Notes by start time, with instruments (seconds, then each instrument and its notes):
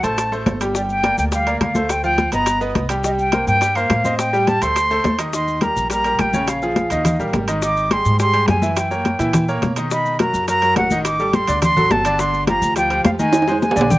0.03 upright bass A1, grand piano A3 A4 C5, flute A5, high bongo, high conga, high timbale, maracas
0.18 high bongo, high conga, high timbale, maracas
0.32 grand piano A3 A4 C5, high conga, maracas
0.46 upright bass G1, high bongo, low bongo, high conga, high timbale, low timbale, maracas
0.61 grand piano G3 G4 G5, high bongo, high conga, high timbale, maracas
0.75 grand piano G3 G4 G5, flute D5, high bongo, high conga, maracas
0.89 flute G5, high conga, maracas
1.03 grand piano A#3 A#4 D5, high bongo, high conga, high timbale, maracas
1.18 upright bass D2, flute G5, high conga, maracas
1.32 grand piano G3 G4 G5, flute F5, high bongo, high conga, high timbale, maracas
1.47 grand piano A#3 A#4 D5, high conga, high timbale, maracas
1.61 upright bass D2, flute F5, high bongo, low bongo, high conga, high timbale, maracas
1.75 grand piano A3 A4 C5, high conga, maracas
1.89 flute G5, high bongo, high conga, high timbale, maracas
2.03 grand piano F3 F4 F5, flute G5, high bongo, high conga, maracas
2.18 high bongo, high conga, high timbale, maracas
2.32 upright bass G1, grand piano B3 B4 D#5, flute A#5, high bongo, high conga, high timbale, maracas
2.46 high bongo, high conga, high timbale, maracas
2.61 grand piano B3 B4 D#5, high conga, maracas
2.75 upright bass C2, high bongo, low bongo, high conga, high timbale, maracas
2.89 grand piano G3 G4 G5, high bongo, high conga, high timbale, maracas
3.04 grand piano G3 G4 G5, flute D#5, high bongo, high conga, maracas
3.19 flute G5, high conga, maracas
3.32 grand piano A#3 A#4 C5, high bongo, high conga, high timbale, maracas
3.47 upright bass G2, flute G5, high conga, maracas
3.61 grand piano G3 G4 G5, high bongo, high conga, high timbale, maracas
3.75 grand piano A#3 A#4 C5, flute F5, high conga, high timbale, maracas
3.90 upright bass A2, high bongo, low bongo, high conga, high timbale, maracas
4.05 grand piano C4 C5 D#5, high conga, maracas
4.19 flute G5, high bongo, high conga, high timbale, maracas
4.33 grand piano G3 G4 G5, high bongo, high conga, maracas
4.47 flute A5, high bongo, high conga, high timbale, maracas
4.62 upright bass D2, grand piano A3 A4 C5, flute C6, high bongo, high conga, high timbale, maracas
4.76 high bongo, high conga, high timbale, maracas
4.90 grand piano A3 A4 C5, high conga, maracas
5.04 upright bass D#2, high bongo, low bongo, high conga, high timbale, low timbale, maracas
5.18 grand piano D#3 D#4 D#5, high bongo, high conga, high timbale, maracas
5.33 grand piano D#3 D#4 D#5, flute C6, high bongo, high conga, maracas
5.48 high conga, maracas
5.61 grand piano G3 G4 A#4, flute A#5, high bongo, high conga, high timbale, maracas
5.76 upright bass A#1, high conga, maracas
5.90 grand piano G3 G4 A#4, flute A#5, high bongo, high conga, high timbale, maracas
6.04 grand piano G3 G4 A#4, high conga, high timbale, maracas
6.19 upright bass A#1, flute G5, high bongo, low bongo, high conga, high timbale, maracas
6.34 grand piano C#3 C#4 C#5, high conga, maracas
6.48 flute F5, high bongo, high conga, high timbale, maracas
6.62 grand piano F3 F4 G#4, high bongo, high conga, maracas
6.76 high bongo, high conga, high timbale, maracas
6.90 upright bass D#2, grand piano D#3 D#4 D#5, high bongo, high conga, high timbale, maracas
7.05 high bongo, high conga, low conga, high timbale, maracas
7.19 upright bass A#1, grand piano G3 G4 A#4, maracas
7.33 upright bass G#1, high bongo, low bongo, high conga, high timbale, low timbale, maracas
7.48 grand piano D#3 D#4 D#5, high bongo, high conga, high timbale, maracas
7.62 grand piano D#3 D#4 D#5, flute D6, high bongo, high conga, maracas
7.77 high conga, maracas
7.91 grand piano G3 G4 G#4, flute C6, high bongo, high conga, high timbale, maracas
8.05 upright bass G#2, high conga, maracas
8.19 grand piano G3 G4 G#4, flute C6, high bongo, high conga, high timbale, maracas
8.33 grand piano G3 G4 G#4, high conga, high timbale, maracas
8.48 upright bass F#2, flute G#5, high bongo, low bongo, high conga, high timbale, low timbale, maracas
8.62 grand piano E3 E4 E5, high conga, maracas
8.76 flute G5, high bongo, high conga, high timbale, maracas
8.91 grand piano A#3 A#4 C#5, high bongo, high conga, maracas
9.05 high bongo, high conga, high timbale, maracas
9.19 upright bass A#2, grand piano E3 E4 E5, high bongo, high conga, high timbale, maracas
9.33 high bongo, high conga, low conga, high timbale, maracas
9.48 grand piano A#3 A#4 C#5, high conga, maracas
9.62 upright bass B2, high bongo, low bongo, high conga, high timbale, maracas
9.76 grand piano D#3 D#4 D#5, high bongo, high conga, high timbale, maracas
9.91 grand piano D#3 D#4 D#5, flute B5, high bongo, high conga, maracas
10.06 high conga, maracas
10.19 grand piano F#3 F#4 A#4, flute A#5, high bongo, high conga, high timbale, maracas
10.34 upright bass F#2, high conga, maracas
10.48 grand piano F#3 F#4 A#4, flute A#5, high bongo, high conga, high timbale, maracas
10.62 grand piano F#3 F#4 A#4, high conga, high timbale, maracas
10.76 upright bass A1, flute F#5, high bongo, low bongo, high conga, high timbale, low timbale, maracas
10.91 grand piano D#3 D#4 D#5, high conga, maracas
11.05 flute D6, high bongo, high conga, high timbale, maracas
11.19 grand piano G3 G4 A4, high bongo, high conga, maracas
11.33 flute C6, high bongo, high conga, high timbale, maracas
11.47 upright bass D2, grand piano D3 D4 D5, high bongo, high conga, high timbale, maracas
11.62 flute C6, high bongo, high conga, low conga, high timbale, maracas
11.77 upright bass A1, grand piano F#3 F#4 A4, high conga, low conga, maracas
11.91 upright bass G1, flute A5, high bongo, low bongo, high conga, high timbale, low timbale, maracas
12.05 grand piano D3 D4 D5, high bongo, high conga, high timbale, maracas
12.19 grand piano D3 D4 D5, flute C6, high bongo, high conga, maracas
12.33 high conga, maracas
12.47 grand piano F3 F4 G4, flute A#5, high bongo, high conga, high timbale, maracas
12.62 upright bass D2, high conga, maracas
12.76 grand piano F3 F4 G4, flute G5, high bongo, high conga, high timbale, maracas
12.90 grand piano F3 F4 G4, high conga, high timbale, maracas
13.05 upright bass F2, flute F5, high bongo, low bongo, high conga, high timbale, low timbale, maracas
13.19 grand piano D#3 D#4 D#5, flute G#5, high conga, maracas
13.33 high bongo, high conga, high timbale, maracas
13.42 high timbale
13.48 grand piano G#3 G#4 C5, high bongo, high conga, maracas
13.52 high timbale
13.62 flute G#5, high bongo, high conga, maracas
13.71 low timbale
13.76 upright bass A#1, grand piano D3 D4 D5, high conga, maracas
13.81 low timbale
13.90 flute G5, low bongo, high conga, low conga, maracas